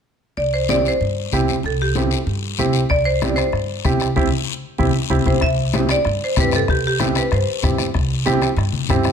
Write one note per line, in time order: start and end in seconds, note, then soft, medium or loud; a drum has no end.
0.37 0.88 C2 medium
0.37 0.53 D5 medium
0.37 high conga soft
0.37 long guiro medium
0.54 0.68 C5 medium
0.69 0.91 C4 medium
0.69 0.91 E4 medium
0.69 0.91 G4 medium
0.69 0.84 D5 medium
0.69 high conga medium
0.69 short guiro medium
0.85 1.68 C5 medium
0.85 short guiro medium
1.01 1.26 G2 medium
1.01 high conga soft
1.01 long guiro medium
1.32 1.57 C2 medium
1.32 1.55 C4 medium
1.32 1.55 E4 medium
1.32 1.55 G4 medium
1.32 high conga medium
1.32 short guiro medium
1.48 high conga medium
1.48 short guiro medium
1.63 2.14 C2 medium
1.63 1.79 A4 medium
1.63 high conga soft
1.63 long guiro medium
1.82 2.10 G4 medium
1.95 2.18 C4 medium
1.95 2.18 E4 medium
1.95 2.18 G4 medium
1.95 high conga medium
1.95 short guiro medium
2.11 short guiro medium
2.27 2.52 G2 medium
2.27 high conga soft
2.27 long guiro medium
2.58 2.84 C2 medium
2.58 2.81 C4 medium
2.58 2.81 E4 medium
2.58 2.81 G4 medium
2.58 high conga medium
2.58 short guiro medium
2.73 short guiro medium
2.89 3.41 C2 medium
2.89 3.05 D5 loud
2.89 bombo low medium
2.89 bombo rim medium
2.89 high conga soft
2.89 long guiro medium
3.05 3.28 C5 medium
3.21 3.44 C4 medium
3.21 3.44 E4 medium
3.21 3.45 G4 medium
3.21 bombo rim medium
3.21 high conga medium
3.21 short guiro medium
3.29 3.37 D5 medium
3.36 5.06 C5 medium
3.36 bombo rim medium
3.36 short guiro medium
3.52 3.78 G2 medium
3.52 bombo rim medium
3.52 high conga soft
3.52 long guiro medium
3.84 4.10 C2 medium
3.84 4.07 C4 medium
3.84 4.07 E4 medium
3.84 4.07 G4 medium
3.84 bombo low medium
3.84 bombo rim medium
3.84 high conga medium
3.84 short guiro medium
4.00 bombo rim medium
4.00 short guiro medium
4.16 4.28 C2 medium
4.16 4.26 C4 medium
4.16 4.26 E4 medium
4.16 4.26 G4 medium
4.16 bombo low medium
4.16 high conga medium
4.16 long guiro medium
4.78 4.91 C2 medium
4.78 4.89 C4 medium
4.78 4.89 E4 medium
4.78 4.89 G4 medium
4.78 bombo low medium
4.78 high conga medium
4.78 long guiro medium
5.09 5.22 C2 medium
5.09 5.21 C4 medium
5.09 5.20 E4 medium
5.09 5.21 G4 medium
5.09 bombo low medium
5.09 high conga medium
5.09 long guiro medium
5.25 5.38 C2 medium
5.25 5.36 C4 medium
5.25 5.36 E4 medium
5.25 5.37 G4 medium
5.25 5.34 C5 medium
5.25 bombo low medium
5.25 high conga medium
5.25 long guiro medium
5.41 5.93 C2 medium
5.41 5.86 E5 loud
5.41 bombo low medium
5.41 bombo rim medium
5.41 high conga soft
5.41 long guiro medium
5.73 5.96 C4 medium
5.73 5.97 E4 medium
5.73 5.96 G4 medium
5.73 bombo rim medium
5.73 high conga medium
5.73 short guiro medium
5.89 6.23 D5 medium
5.89 bombo rim medium
5.89 short guiro medium
6.05 6.18 G2 medium
6.05 bombo rim medium
6.05 high conga soft
6.05 long guiro medium
6.24 6.39 C5 medium
6.36 6.62 G2 medium
6.36 6.59 C4 medium
6.36 6.59 E4 medium
6.36 6.59 G4 medium
6.36 bombo low medium
6.36 bombo rim medium
6.36 high conga medium
6.36 short guiro medium
6.40 6.47 B4 medium
6.51 bombo rim medium
6.51 high conga medium
6.51 short guiro medium
6.56 6.62 A4 medium
6.68 7.19 C2 medium
6.68 6.77 G4 medium
6.68 bombo low medium
6.68 bombo rim medium
6.68 high conga soft
6.68 long guiro medium
6.87 7.15 G4 medium
7.00 7.22 C4 medium
7.00 7.22 E4 medium
7.00 7.22 G4 medium
7.00 bombo rim medium
7.00 high conga medium
7.00 short guiro medium
7.15 7.24 B4 medium
7.15 bombo rim medium
7.15 short guiro medium
7.31 7.44 G2 medium
7.31 7.77 C5 medium
7.31 bombo rim medium
7.31 high conga soft
7.31 long guiro medium
7.63 7.89 G2 medium
7.63 7.85 C4 medium
7.63 7.85 E4 medium
7.63 7.85 G4 medium
7.63 bombo low medium
7.63 bombo rim medium
7.63 high conga medium
7.63 short guiro medium
7.78 bombo rim medium
7.78 high conga medium
7.78 short guiro medium
7.94 8.45 C2 medium
7.94 bombo low medium
7.94 bombo rim medium
7.94 high conga soft
7.94 long guiro medium
8.25 8.48 C4 medium
8.25 8.48 E4 medium
8.25 8.48 G4 medium
8.25 bombo rim medium
8.25 high conga medium
8.25 short guiro medium
8.42 bombo rim medium
8.42 short guiro medium
8.57 8.70 G2 medium
8.57 bombo rim medium
8.57 high conga soft
8.57 long guiro medium
8.73 high conga medium
8.88 9.12 G2 medium
8.88 9.11 C4 medium
8.88 9.11 E4 medium
8.88 9.12 G4 medium
8.88 bombo low medium
8.88 bombo rim medium
8.88 high conga medium
8.88 short guiro medium
9.03 bombo rim medium
9.03 high conga medium
9.03 short guiro medium